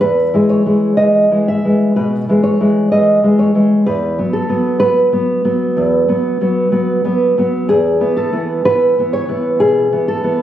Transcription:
0.01 0.34 E2 medium
0.01 0.49 B4 medium
0.34 0.65 E3 soft
0.34 0.65 G#3 soft
0.49 0.97 C#5 medium
0.66 0.96 E3 soft
0.66 0.97 G#3 soft
0.97 1.30 E3 soft
0.97 1.31 G#3 soft
0.97 1.45 D#5 medium
1.31 1.63 E3 soft
1.31 1.64 G#3 soft
1.48 1.95 E5 medium
1.64 1.96 E3 soft
1.64 2.29 G#3 soft
1.96 2.28 B2 soft
1.96 2.43 B4 medium
2.29 2.59 E3 soft
2.29 2.60 G#3 soft
2.43 2.90 C#5 medium
2.61 2.91 E3 soft
2.61 2.91 G#3 soft
2.92 3.22 E3 soft
2.92 3.23 G#3 soft
2.92 3.38 D#5 medium
3.23 3.54 E3 soft
3.23 3.54 G#3 soft
3.39 3.86 C#5 medium
3.55 3.85 E3 soft
3.55 3.85 G#3 soft
3.86 4.19 E2 medium
3.86 4.33 B4 medium
4.19 4.48 F#3 soft
4.19 4.48 B3 soft
4.33 4.81 A4 medium
4.49 4.80 F#3 soft
4.49 4.80 B3 soft
4.80 5.11 F#3 soft
4.80 5.12 B3 soft
4.80 7.65 B4 medium
5.12 5.44 F#3 soft
5.12 5.44 B3 soft
5.45 6.07 F#3 soft
5.45 6.08 B3 soft
5.77 6.09 E2 medium
6.08 6.40 F#3 soft
6.08 6.40 B3 soft
6.41 6.71 F#3 soft
6.41 6.71 B3 soft
6.72 7.04 F#3 soft
6.72 7.04 B3 soft
7.05 7.37 F#3 soft
7.05 7.38 B3 medium
7.38 7.67 F#3 soft
7.38 7.68 B3 soft
7.69 8.02 E2 medium
7.69 8.16 G#4 medium
8.00 8.32 E3 soft
8.00 8.32 B3 medium
8.17 8.64 A4 medium
8.33 8.64 E3 soft
8.33 8.65 B3 soft
8.65 8.97 E3 soft
8.65 8.98 B3 medium
8.65 9.12 B4 medium
8.99 9.28 E3 soft
8.99 9.28 B3 medium
9.13 9.60 C#5 medium
9.29 9.91 E3 soft
9.29 9.91 B3 medium
9.60 9.92 B2 medium
9.60 10.07 G#4 medium
9.92 10.22 E3 soft
9.92 10.23 B3 medium
10.08 10.42 A4 medium
10.24 10.42 E3 soft
10.24 10.42 B3 medium

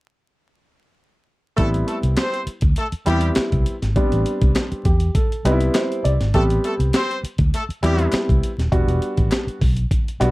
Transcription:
1.57 1.81 A1 loud
1.57 2.47 G3 medium
1.57 1.67 A3 loud
1.57 2.47 B3 medium
1.57 2.47 C4 medium
1.57 2.47 E4 medium
1.57 1.67 A4 loud
1.57 kick medium
1.57 closed hi-hat medium
1.74 closed hi-hat medium
1.87 1.97 A3 medium
1.87 1.97 A4 medium
1.87 closed hi-hat medium
2.03 2.14 C2 medium
2.03 closed hi-hat medium
2.17 2.41 C4 medium
2.17 2.41 C5 loud
2.17 snare loud
2.17 clap medium
2.17 closed hi-hat medium
2.34 closed hi-hat soft
2.47 muted fingered electric bass stroke soft
2.47 closed hi-hat medium
2.61 2.73 D2 medium
2.61 kick medium
2.61 closed hi-hat medium
2.76 2.86 A3 medium
2.76 2.86 A4 medium
2.76 closed hi-hat medium
2.92 muted fingered electric bass stroke soft
2.92 closed hi-hat soft
3.06 3.30 E2 medium
3.06 3.73 G3 medium
3.06 3.30 G3 loud
3.06 3.73 B3 medium
3.06 3.73 C4 medium
3.06 3.73 E4 medium
3.06 3.30 G4 loud
3.06 clap medium
3.06 closed hi-hat medium
3.21 closed hi-hat medium
3.35 muted fingered electric bass stroke medium
3.35 snare loud
3.35 clap medium
3.35 closed hi-hat medium
3.52 3.63 C2 medium
3.52 kick medium
3.52 closed hi-hat soft
3.66 closed hi-hat medium
3.82 3.93 G#1 medium
3.82 snare soft
3.82 closed hi-hat medium
3.96 4.84 G3 medium
3.96 4.85 B3 medium
3.96 4.85 C4 medium
3.96 4.85 D4 medium
3.96 kick loud
3.96 closed hi-hat medium
4.12 4.23 A1 loud
4.12 closed hi-hat medium
4.26 closed hi-hat medium
4.41 4.52 C2 medium
4.41 kick loud
4.41 closed hi-hat medium
4.55 snare loud
4.55 clap medium
4.55 closed hi-hat medium
4.72 muted fingered electric bass stroke medium
4.72 closed hi-hat soft
4.85 5.08 E2 loud
4.85 5.13 G4 medium
4.85 kick loud
4.85 closed hi-hat medium
5.00 closed hi-hat medium
5.15 5.43 A4 medium
5.15 kick loud
5.15 closed hi-hat medium
5.32 closed hi-hat soft
5.45 5.68 C2 medium
5.45 6.12 G3 medium
5.45 6.12 B3 medium
5.45 6.12 C4 medium
5.45 5.52 D#4 medium
5.45 5.73 B4 medium
5.45 clap medium
5.45 closed hi-hat medium
5.52 6.15 E4 loud
5.61 closed hi-hat medium
5.74 6.02 C5 medium
5.74 snare loud
5.74 clap loud
5.74 closed hi-hat medium
5.92 closed hi-hat soft
6.04 6.17 C2 loud
6.04 6.32 D5 medium
6.04 closed hi-hat medium
6.20 6.31 G#1 medium
6.20 snare soft
6.20 closed hi-hat medium
6.34 6.57 A1 loud
6.34 7.23 G3 medium
6.34 6.44 A3 loud
6.34 7.23 B3 medium
6.34 7.23 C4 medium
6.34 7.23 G4 loud
6.34 6.44 A4 loud
6.34 kick loud
6.34 closed hi-hat medium
6.50 closed hi-hat medium
6.64 6.74 A3 medium
6.64 6.73 A4 medium
6.64 closed hi-hat medium
6.79 6.90 C2 medium
6.79 closed hi-hat medium
6.93 7.18 C4 loud
6.93 7.17 C5 loud
6.93 snare loud
6.93 clap medium
6.93 closed hi-hat medium
7.11 closed hi-hat soft
7.23 muted fingered electric bass stroke soft
7.23 closed hi-hat medium
7.38 7.50 D2 medium
7.38 kick medium
7.38 closed hi-hat medium
7.53 7.62 A3 medium
7.53 7.63 A4 loud
7.53 closed hi-hat loud
7.69 muted fingered electric bass stroke soft
7.69 closed hi-hat soft
7.82 8.06 E2 medium
7.82 8.49 G3 medium
7.82 8.07 G3 medium
7.82 8.49 B3 medium
7.82 8.50 C4 medium
7.82 8.50 E4 loud
7.82 8.07 G4 loud
7.82 clap medium
7.82 closed hi-hat medium
7.99 closed hi-hat medium
8.12 muted fingered electric bass stroke soft
8.12 snare loud
8.12 clap medium
8.12 closed hi-hat medium
8.29 8.40 C2 medium
8.29 kick medium
8.29 closed hi-hat soft
8.43 closed hi-hat medium
8.58 8.69 D#1 medium
8.58 snare soft
8.58 closed hi-hat medium
8.72 8.84 E1 medium
8.72 9.60 G3 medium
8.72 9.61 B3 medium
8.72 9.60 D4 medium
8.72 9.61 F#4 loud
8.72 kick loud
8.72 closed hi-hat medium
8.87 8.98 E1 loud
8.87 closed hi-hat medium
9.02 closed hi-hat medium
9.17 9.28 A1 medium
9.17 kick medium
9.17 closed hi-hat medium
9.31 snare loud
9.31 clap medium
9.31 closed hi-hat medium
9.47 muted fingered electric bass stroke medium
9.47 closed hi-hat soft
9.61 9.84 B1 medium
9.61 kick medium
9.61 open hi-hat medium
9.77 closed hi-hat medium
9.91 kick medium
9.91 closed hi-hat medium
10.08 closed hi-hat soft
10.20 10.31 B1 medium
10.20 10.31 G3 medium
10.20 10.31 B3 medium
10.20 10.31 D4 medium
10.20 10.31 F#4 loud
10.20 clap medium
10.20 closed hi-hat medium

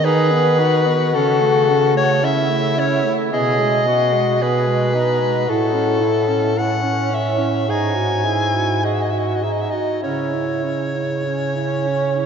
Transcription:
0.00 1.14 D#3 medium
0.00 0.33 D#4 medium
0.00 0.60 G#4 medium
0.05 1.16 B4 loud
0.32 0.61 B3 medium
0.58 0.88 D#4 medium
0.58 2.24 F#4 medium
0.87 1.14 B3 medium
1.14 3.02 C#3 medium
1.14 1.43 C#4 medium
1.14 1.96 A4 medium
1.41 1.71 A3 medium
1.69 1.97 C#4 medium
1.95 2.22 A3 medium
1.95 2.26 C#5 loud
2.23 2.52 C#4 medium
2.23 3.32 E4 medium
2.23 2.81 E5 loud
2.50 2.79 A3 medium
2.78 3.06 C#4 medium
2.78 3.14 C#5 medium
3.05 3.32 A3 medium
3.32 5.45 B2 medium
3.32 3.61 B3 medium
3.32 3.86 G#4 medium
3.32 4.44 D#5 medium
3.59 3.87 G#3 medium
3.85 4.14 B3 medium
3.85 4.43 F#4 medium
4.13 4.40 G#3 medium
4.40 4.69 B3 medium
4.40 4.96 G#4 medium
4.40 5.51 B4 medium
4.67 4.95 G#3 medium
4.94 5.23 B3 medium
4.94 5.50 D#4 medium
5.21 5.47 G#3 soft
5.47 7.71 A2 medium
5.47 5.75 E4 medium
5.47 6.04 F#4 medium
5.47 6.60 A4 medium
5.74 6.03 C#4 medium
6.01 6.30 E4 medium
6.01 6.38 E4 medium
6.29 6.56 C#4 soft
6.57 7.65 C#4 medium
6.57 6.85 E4 medium
6.57 7.16 F#5 medium
6.84 7.12 C#4 soft
7.11 7.40 E4 medium
7.11 7.71 E5 medium
7.39 7.67 C#4 soft
7.68 9.73 G#2 medium
7.68 8.27 D#4 medium
7.68 7.97 G#4 medium
7.68 8.86 G#5 medium
7.95 8.25 F#4 soft
8.24 8.86 E4 medium
8.24 8.56 G#4 soft
8.54 8.82 F#4 soft
8.83 9.45 F#4 medium
8.83 9.14 G#4 soft
8.83 8.95 D#5 medium
8.93 9.03 E5 medium
9.01 9.11 D#5 medium
9.10 9.44 F#4 soft
9.10 9.20 E5 medium
9.18 9.29 D#5 medium
9.27 9.37 E5 medium
9.35 9.45 D#5 medium
9.42 10.04 D#4 medium
9.42 9.74 G#4 soft
9.42 9.53 E5 medium
9.52 9.62 D#5 medium
9.61 9.71 E5 medium
9.70 10.02 F#4 soft
9.70 10.03 D#5 medium
10.02 12.26 C#3 medium
10.02 10.36 C#4 soft
10.02 11.12 E4 medium
10.02 12.26 C#5 medium
10.34 10.66 E4 soft
10.64 10.97 C#4 soft
10.95 11.25 E4 soft
11.25 12.26 C#4 medium
11.25 11.57 C#4 soft
11.56 11.89 E4 soft
11.87 12.18 C#4 soft
12.17 12.26 E4 soft

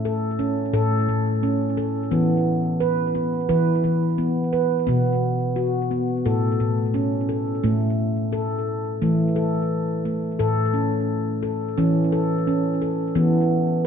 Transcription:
0.00 0.46 A2 medium
0.05 0.40 A4 medium
0.39 0.74 C#4 medium
0.74 1.02 A2 loud
0.74 1.43 A4 medium
1.09 1.91 A2 medium
1.43 1.78 C#4 medium
1.77 2.12 A4 medium
2.11 3.22 E3 medium
2.11 2.81 B3 medium
2.80 3.15 B4 medium
3.15 3.50 B3 medium
3.49 3.77 E3 medium
3.49 4.18 B4 medium
3.84 4.67 E3 medium
4.18 4.53 B3 medium
4.53 4.88 B4 medium
4.87 5.98 B2 medium
4.87 5.56 B3 medium
5.56 5.91 F#4 medium
5.91 6.26 B3 medium
6.26 6.53 A2 medium
6.26 6.95 A4 medium
6.60 7.43 A2 medium
6.94 7.29 C#4 medium
7.29 7.64 A4 medium
7.64 9.02 A2 medium
7.64 8.33 A3 medium
8.33 9.02 A4 medium
9.02 9.30 E3 medium
9.02 9.36 A3 medium
9.36 10.05 A4 medium
10.05 10.40 A3 medium
10.39 11.78 A2 medium
10.39 10.74 A4 medium
10.74 11.43 C#4 medium
11.43 11.78 A4 medium
11.78 12.06 E3 loud
11.78 12.12 C#4 medium
12.12 12.47 A4 medium
12.47 12.82 C#4 medium
12.82 13.16 A4 medium
13.15 13.87 E3 loud
13.15 13.85 B3 medium

